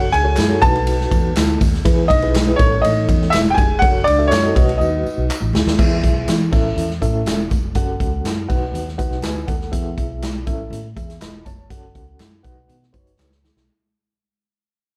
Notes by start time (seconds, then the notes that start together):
Already playing: F#4 F#5
0.00 muted conga
0.12 C#2 G#4 G#5, ride
0.24 F#4 A4 C#5
0.36 F#2, snare, clap, ride, tambourine
0.48 F#4 A4 C#5, high conga
0.61 B1 D#4 F#4 A4 B4 A5, kick, ride, tambourine, low conga
0.76 ride
0.87 ride, tambourine
1.01 snare
1.11 E2, kick, ride, tambourine, high conga
1.36 D2, snare, clap, ride, tambourine
1.48 muted conga, high conga
1.61 D#2, kick, open hi-hat, ride, tambourine, high conga, low conga
1.74 snare
1.85 E2 E4 G#4 B4, kick, hi-hat pedal, ride, tambourine
1.97 muted conga
2.07 B1 D#4 D#5, kick, ride
2.12 tambourine
2.22 E4 G#4 B4, ride
2.35 snare, clap, ride, tambourine
2.47 E4 G#4 B4, high conga
2.56 A1 E3 C#4 A4 C#5, kick, ride, tambourine, low conga
2.82 A2 D#4 D#5, ride, tambourine
2.97 muted conga
3.08 E2, kick, ride, tambourine, high conga
3.22 snare
3.30 E1 E5, snare, clap, ride, tambourine, muted conga
3.45 muted conga, high conga
3.50 G4 G5
3.54 F1 G#4 G#5, kick, ride, tambourine, high conga, low conga
3.79 F#1 F#4 A4 C#5 F#5, kick, ride, tambourine, muted conga
4.03 C#2 D4 D5, ride, tambourine
4.19 F#4 A4 E5
4.27 F#2 C#5, muted conga
4.32 snare, clap, ride, tambourine
4.42 F#4 A4 D#5, muted conga, high conga
4.55 B1 F#4 B4 D#5, kick, ride, tambourine, low conga
4.69 ride
4.78 D#2 D#4 D#5, tambourine, muted conga
5.04 muted fingered electric bass stroke, tambourine, high conga
5.18 B1
5.29 clap, tambourine, muted conga
5.41 A1, high conga
5.53 D2, snare, tambourine, high conga, low conga
5.66 D#2, snare
5.78 E2 B3 E4 G#4 E5, kick, crash, tambourine, muted conga
6.03 B1, kick, closed hi-hat
6.28 E3, snare, clap, closed hi-hat, tambourine, muted conga
6.39 high conga
6.51 A1 C#4 E4 A4 E5, kick, tambourine, crash, low conga
6.76 E2, closed hi-hat, tambourine, muted conga, low conga
6.89 snare, muted conga
7.00 A2 C#4 E4 A4 E5, kick, closed hi-hat, tambourine, high conga
7.25 E1, snare, clap, closed hi-hat, tambourine, muted conga
7.38 muted conga, high conga
7.50 F1, kick, closed hi-hat, tambourine, high conga, low conga
7.75 F#1 C#4 F#4 A4 F#5, kick, closed hi-hat, tambourine, muted conga
8.00 C#2, kick, closed hi-hat, tambourine
8.24 F#2, snare, clap, closed hi-hat, tambourine, muted conga
8.37 muted conga, high conga
8.48 B1 D#4 F#4 B4 F#5, kick, tambourine, crash, low conga
8.74 D#2, closed hi-hat, tambourine, muted conga, low conga
8.88 snare
8.98 D#4 F#4 B4 F#5, kick, closed hi-hat, tambourine, high conga
9.11 B1, snare
9.22 D2 B4 G#5, snare, clap, closed hi-hat, tambourine, muted conga
9.35 muted conga, high conga
9.47 D#2 A4 F#5, kick, closed hi-hat, tambourine, high conga, low conga
9.62 snare
9.72 E2 B3 E4 G#4 E5, kick, closed hi-hat, tambourine, muted conga
9.84 muted conga
9.98 B1, kick, closed hi-hat
10.22 snare, clap, closed hi-hat, tambourine, muted conga
10.34 muted conga, high conga
10.47 A1 C#4 E4 A4 E5, kick, closed hi-hat, tambourine, low conga
10.70 A2, closed hi-hat, tambourine, muted conga, low conga
10.83 muted conga
10.96 E2 G#4 E5, kick, closed hi-hat, tambourine, high conga
11.10 snare, closed hi-hat
11.21 E1 D#5 B5, snare, clap, closed hi-hat, tambourine, muted conga
11.33 muted conga, high conga
11.45 F1 C#5 A5, kick, closed hi-hat, tambourine, high conga, low conga
11.70 F#1 C#4 F#4 A4 F#5, kick, closed hi-hat, tambourine
11.82 muted conga
11.95 C#2, kick, closed hi-hat
12.19 F#2, snare, clap, closed hi-hat, tambourine, muted conga
12.32 high conga
12.43 B1 D#4 F#4 B4 F#5, kick, closed hi-hat, tambourine, low conga
12.69 B2, closed hi-hat, tambourine, muted conga, low conga
12.83 snare
12.93 F#1 D#4 F#4 B4 C5, kick, closed hi-hat, tambourine, high conga
12.99 C#5
13.07 closed hi-hat
13.18 C#2, snare, clap, tambourine, muted conga
13.31 snare, muted conga, high conga
13.44 snare, tambourine, high conga, low conga
13.56 B1, snare